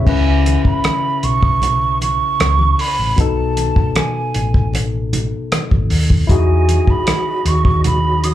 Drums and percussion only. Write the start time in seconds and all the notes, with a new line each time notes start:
0.07 kick, crash, muted conga
0.46 closed hi-hat, muted conga
0.65 kick
0.84 cross-stick, closed hi-hat, high conga
1.23 closed hi-hat
1.43 kick
1.62 closed hi-hat, muted conga, low conga
2.01 closed hi-hat, muted conga
2.40 cross-stick, closed hi-hat, high conga
2.59 high conga
2.79 open hi-hat
3.18 kick, closed hi-hat, muted conga
3.57 closed hi-hat, muted conga
3.76 kick
3.95 cross-stick, closed hi-hat, high conga
4.34 closed hi-hat
4.54 kick
4.74 cross-stick, closed hi-hat, muted conga
5.13 closed hi-hat, muted conga, low conga
5.52 cross-stick, closed hi-hat, high conga
5.71 kick, high conga
5.90 open hi-hat
6.10 kick
6.29 kick, closed hi-hat, muted conga
6.69 closed hi-hat, muted conga
6.87 kick
7.07 cross-stick, closed hi-hat, high conga
7.46 closed hi-hat
7.65 kick
7.84 closed hi-hat, muted conga, low conga
8.24 closed hi-hat, muted conga